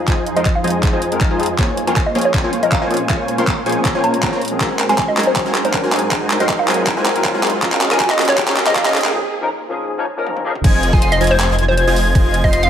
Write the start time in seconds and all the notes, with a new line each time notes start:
Already playing: F2 F3 D#4 G#4, riser
0.07 F3 G#3 C4 D#4 F4 G#4 C5 D#5 G#5, kick, clap, closed hi-hat
0.27 closed hi-hat
0.35 F3 G#3 C4 D#4 F4 A#4 C5 D#5 C6, closed hi-hat
0.45 D#5, kick, clap, closed hi-hat
0.55 F5
0.63 F3 G#3 C4 D#4 F4 G#4 C5 D#5 G#5, closed hi-hat
0.68 closed hi-hat
0.70 closed hi-hat
0.83 kick, clap, closed hi-hat
0.92 F3 G#3 C4 D#4 F4 C5 D#5 G#5
1.02 closed hi-hat
1.11 F3 G#3 C4 D#4 A#4, closed hi-hat
1.21 kick, clap, closed hi-hat
1.31 F3 F4 C5 D#5 G#5
1.39 F3 G#3 C4 D#4 G#4, closed hi-hat
1.43 closed hi-hat
1.46 closed hi-hat
1.57 A#2 F3 G#3 A#3 C4 C#4 F4 G#4 A#4 C5 C#5 G#5, kick, clap, closed hi-hat
1.77 closed hi-hat
1.86 F3 A#3 C4 C#4 F4 A#4 C5 C#5 G#5 C6, closed hi-hat
1.96 G#5, kick, clap, closed hi-hat
2.06 D#5
2.14 F3 A#3 C4 C#4 F4 G#4 C5 C#5 G#5, closed hi-hat
2.19 closed hi-hat
2.21 C#5, closed hi-hat
2.34 kick, clap, closed hi-hat
2.43 F3 A#3 C4 C#4 F4 C5 C#5 G#5
2.53 closed hi-hat
2.62 F3 A#3 C4 C#4 A#4 D#5, closed hi-hat
2.72 F5, kick, clap, closed hi-hat
2.82 A#3 F4 C5 C#5 D#5 G#5
2.90 F3 A#3 C4 C#4 G#4, closed hi-hat
2.94 closed hi-hat
2.97 closed hi-hat
3.08 F3 A#3 C4 C#4 F4 G#4 C5 C#5 F5 G#5, kick, clap, closed hi-hat
3.28 closed hi-hat
3.37 F3 A#3 C4 C#4 F4 A#4 C5 C#5 C6, closed hi-hat
3.47 kick, clap, closed hi-hat
3.65 F3 A#3 C4 C#4 F4 G#4 C5 C#5 G#5, closed hi-hat
3.69 closed hi-hat
3.72 closed hi-hat
3.85 kick, clap, closed hi-hat
3.94 F3 A#3 C4 C#4 F4 C5 C#5 G#5
4.04 A#5, closed hi-hat
4.14 closed hi-hat
4.22 F3 A#3 C4 C#4 F4 G#4 C5 C#5 A#5, kick, clap, closed hi-hat
4.33 A#3 F4 C5 C#5 A#5
4.42 closed hi-hat
4.45 closed hi-hat
4.48 F3 A#3 C4, closed hi-hat
4.52 C#4 G#4
4.59 G#2 F#3 G#3 A#3 C4 D#4 F#4 G#4 A#4 C5 G#5, kick, clap, closed hi-hat
4.79 clap, closed hi-hat
4.88 F#3 G#3 A#3 C4 D#4 F#4 A#4 C5 G#5 C6, closed hi-hat
4.98 G#5, kick, clap, closed hi-hat
5.08 D#5
5.16 F#3 G#3 A#3 C4 D#4 F#4 G#4 A#4 C5 G#5, clap, closed hi-hat
5.20 closed hi-hat
5.23 C5, closed hi-hat
5.36 kick, clap, closed hi-hat
5.45 F#3 G#3 A#3 C4 D#4 F#4 A#4 C5 G#5
5.55 clap, closed hi-hat
5.64 F#3 A#3 C4 D#4 A#4 C5, closed hi-hat
5.74 kick, clap, closed hi-hat
5.84 G#3 F#4 A#4 C5 G#5
5.91 F#3 A#3 C4 D#4 G#4, clap, closed hi-hat
5.96 closed hi-hat
5.99 closed hi-hat
6.10 F#3 G#3 A#3 C4 D#4 F#4 G#4 A#4 C5 G#5, kick, clap, closed hi-hat
6.30 clap, closed hi-hat
6.39 F#3 G#3 A#3 C4 D#4 F#4 A#4 C5 D#5 C6, closed hi-hat
6.49 D#5, kick, clap, closed hi-hat
6.59 F5
6.67 F#3 G#3 A#3 C4 D#4 F#4 G#4 A#4 C5 G#5, clap, closed hi-hat
6.71 closed hi-hat
6.74 closed hi-hat
6.87 kick, clap, closed hi-hat
6.96 F#3 G#3 A#3 C4 D#4 F#4 A#4 C5 G#5
7.06 clap, closed hi-hat
7.15 F#3 A#3 C4 D#4 A#4, closed hi-hat
7.24 kick, clap, closed hi-hat
7.35 G#3 F#4 A#4 C5 G#5
7.42 F#3 A#3 C4 D#4 G#4, clap, closed hi-hat
7.47 closed hi-hat
7.50 closed hi-hat
7.61 C#3 F3 A#3 C#4 D#4 F4 G#4 A#4 D#5 F5, kick, clap, closed hi-hat
7.72 clap
7.81 clap, closed hi-hat
7.90 F3 A#3 C#4 D#4 G#4 A#4 D#5 G#5 A#5, clap, closed hi-hat
8.00 G#5, kick, clap, closed hi-hat
8.10 D#5, clap
8.18 F3 A#3 C#4 D#4 G#4 A#4 D#5 F5, clap, closed hi-hat
8.22 closed hi-hat
8.25 C#5, clap, closed hi-hat
8.38 kick, clap, closed hi-hat
8.47 F3 A#3 C#4 D#4 G#4 A#4 C#5 D#5 F5, clap
8.57 clap, closed hi-hat
8.66 F3 A#3 C#4 D#4 A#4 D#5, clap, closed hi-hat
8.75 F5, kick, clap, closed hi-hat
8.86 C#4 G#4 A#4 D#5 F5, clap
8.93 F3 A#3 C#4 D#4 G#4, clap, closed hi-hat
8.98 closed hi-hat
9.01 clap, closed hi-hat
9.12 F3 A#3 C#4 D#4 G#4
9.41 F3 A#3 C#4 D#4 A#4
9.69 F3 A#3 C#4 D#4 G#4
9.98 F3 A#3 C#4 D#4 C#5
10.17 F3 A#3 C#4 D#4 A#4
10.27 high tom
10.37 high tom
10.44 F3 A#3 C#4 D#4 G#4
10.55 mid tom
10.64 F1 F3 F4 C5 D#5 G#5 G#6, kick, closed hi-hat, crash
10.83 closed hi-hat
10.93 F1 F3 F4 C5 D#5 G#5 C6 C7, kick
11.02 G#5, closed hi-hat
11.12 D#5, closed hi-hat
11.21 F1 F3 F4 C5 D#5 G#5 G#6, closed hi-hat
11.24 closed hi-hat
11.27 C5, closed hi-hat
11.40 clap, closed hi-hat
11.50 F1 F3 F4 C5 D#5 G#5 G#6
11.59 closed hi-hat
11.68 C5
11.77 C5, closed hi-hat
11.87 F1 F3 F4 C5 D#5 G#5 G#6
11.96 open hi-hat
12.15 F1 F3 F4 C5 D#5 G#5, kick, closed hi-hat
12.34 closed hi-hat
12.44 F1 F3 F4 C5 D#5 C6 C7, kick
12.53 D#5, closed hi-hat
12.63 F5, closed hi-hat